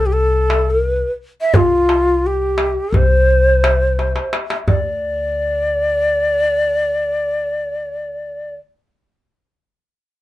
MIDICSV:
0, 0, Header, 1, 4, 480
1, 0, Start_track
1, 0, Tempo, 698487
1, 1061, Time_signature, 9, 3, 24, 8
1, 7016, End_track
2, 0, Start_track
2, 0, Title_t, "Ney"
2, 0, Program_c, 0, 77
2, 42, Note_on_c, 0, 67, 71
2, 87, Note_on_c, 0, 69, 88
2, 98, Note_off_c, 0, 67, 0
2, 483, Note_on_c, 0, 71, 81
2, 493, Note_off_c, 0, 69, 0
2, 766, Note_off_c, 0, 71, 0
2, 969, Note_on_c, 0, 76, 83
2, 1075, Note_on_c, 0, 65, 80
2, 1085, Note_off_c, 0, 76, 0
2, 1556, Note_on_c, 0, 67, 70
2, 1567, Note_off_c, 0, 65, 0
2, 2031, Note_on_c, 0, 72, 79
2, 2042, Note_off_c, 0, 67, 0
2, 2987, Note_off_c, 0, 72, 0
2, 3215, Note_on_c, 0, 74, 81
2, 5877, Note_off_c, 0, 74, 0
2, 7016, End_track
3, 0, Start_track
3, 0, Title_t, "Upright bass"
3, 0, Program_c, 1, 32
3, 0, Note_on_c, 1, 36, 78
3, 694, Note_off_c, 1, 36, 0
3, 1058, Note_on_c, 1, 36, 65
3, 1894, Note_off_c, 1, 36, 0
3, 2010, Note_on_c, 1, 36, 83
3, 2849, Note_off_c, 1, 36, 0
3, 3213, Note_on_c, 1, 38, 68
3, 5875, Note_off_c, 1, 38, 0
3, 7016, End_track
4, 0, Start_track
4, 0, Title_t, "Darbuka"
4, 344, Note_on_c, 9, 63, 68
4, 412, Note_off_c, 9, 63, 0
4, 1056, Note_on_c, 9, 64, 87
4, 1125, Note_off_c, 9, 64, 0
4, 1299, Note_on_c, 9, 63, 59
4, 1367, Note_off_c, 9, 63, 0
4, 1771, Note_on_c, 9, 63, 65
4, 1840, Note_off_c, 9, 63, 0
4, 2020, Note_on_c, 9, 64, 70
4, 2089, Note_off_c, 9, 64, 0
4, 2501, Note_on_c, 9, 63, 72
4, 2570, Note_off_c, 9, 63, 0
4, 2742, Note_on_c, 9, 63, 47
4, 2811, Note_off_c, 9, 63, 0
4, 2856, Note_on_c, 9, 62, 66
4, 2925, Note_off_c, 9, 62, 0
4, 2975, Note_on_c, 9, 63, 68
4, 3044, Note_off_c, 9, 63, 0
4, 3094, Note_on_c, 9, 62, 81
4, 3163, Note_off_c, 9, 62, 0
4, 3213, Note_on_c, 9, 64, 80
4, 3282, Note_off_c, 9, 64, 0
4, 7016, End_track
0, 0, End_of_file